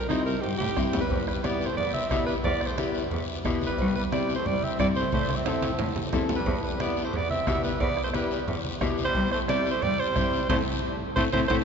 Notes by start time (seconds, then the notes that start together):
0.09 C4 D#4 E4 G4, bombo rim, high conga, short guiro
0.26 C2 A#4, short guiro
0.42 G2 G4, cowbell, high conga, high timbale, long guiro
0.58 A2 G4, high conga, low timbale
0.77 G2 C4 E4 G4, bombo low, bombo rim, low timbale, short guiro
0.93 E2, low conga, low timbale, short guiro
1.01 G3 B4
1.10 E2, bombo low, cowbell, high conga, long guiro
1.28 G3 B4, bombo rim
1.44 B3 E4 G4 D5, bombo rim, cowbell, high conga, short guiro
1.61 short guiro
1.66 A3 C5
1.77 E2 B3 D5, cowbell, high conga, low conga, long guiro
1.94 C4 E5, high conga
2.10 B2 B3 E4 G4 E5, bombo low, bombo rim, cowbell, high conga, short guiro
2.27 G3 B4, high conga, short guiro
2.44 E2 B3 D5, bombo low, cowbell, high conga, long guiro
2.61 bombo rim
2.67 A3 C5
2.78 G3 B3 E4 G4 B4, bombo rim, cowbell, high conga, short guiro
2.94 short guiro
3.11 E2, cowbell, high conga, low conga, long guiro
3.45 B2 B3 E4 G4, bombo low, bombo rim, cowbell, high conga, short guiro
3.62 high conga, short guiro
3.67 G3 B4
3.78 C2, bombo low, cowbell, high conga, long guiro
3.96 G3 B4
4.12 G3 C4 E4 G4 D5, bombo rim, cowbell, high conga, short guiro
4.29 short guiro
4.36 A3 C5
4.46 C2 G3 D5, cowbell, high conga, low conga, long guiro
4.63 C4 E5, high conga
4.79 G2 G3 C4 E4 G4 D5, bombo low, bombo rim, cowbell, high conga, short guiro
4.95 A3 C5, high conga, short guiro
5.12 A2 A3 C5, bombo low, cowbell, high conga, long guiro
5.29 bombo rim, high conga
5.36 C4 E5
5.46 C4 E4 A4 E5, bombo rim, cowbell, high conga, high timbale, short guiro
5.62 high conga, high timbale, short guiro
5.79 A2, cowbell, low conga, high timbale, long guiro
5.96 low conga, low timbale
6.13 E2 C4 E4 A4, bombo low, bombo rim, cowbell, low conga, low timbale, short guiro
6.29 low conga, low timbale, short guiro
6.36 G3 B4
6.46 E2, bombo low, cowbell, high conga, long guiro
6.64 G3 B4
6.80 B3 E4 G4 D5, bombo rim, cowbell, high conga, short guiro
6.97 short guiro
7.04 A3 C5
7.13 E2 B3 D5, cowbell, high conga, low conga, long guiro
7.31 C4 E5, high conga
7.47 B2 B3 E4 G4 E5, bombo low, bombo rim, cowbell, high conga, short guiro
7.64 G3 B4, high conga, short guiro
7.80 E2 B3 D5, bombo low, cowbell, high conga, long guiro
7.97 bombo rim
8.04 A3 C5
8.14 G3 B3 E4 G4 B4, bombo rim, cowbell, high conga, short guiro
8.31 short guiro
8.48 E2, cowbell, high conga, low conga, long guiro
8.65 high conga
8.81 B2 B3 E4 G4, bombo low, bombo rim, cowbell, high conga, short guiro
8.98 short guiro
9.05 G3 C5
9.15 C2, bombo low, cowbell, high conga, long guiro
9.31 A3 C5, bombo rim
9.48 G3 C4 E4 G4 D5, bombo rim, cowbell, high conga, short guiro
9.66 short guiro
9.71 A3 C5
9.82 C2 G3 D5, cowbell, high conga, low conga, long guiro
10.00 G3 C5
10.16 G2 C4 E4 G4, bombo low, bombo rim, cowbell, high conga, short guiro
10.33 short guiro
10.50 A2 A3 C4 E4 A4 C5, bombo low, high conga, high timbale, long guiro
11.16 A2 A3 C4 E4 A4 C5, bombo low, high conga, high timbale, long guiro
11.33 A2 A3 C4 E4 A4 C5, bombo low, high conga, high timbale, long guiro
11.48 A2 A3 C4 E4 A4 C5, bombo low, high conga, high timbale, long guiro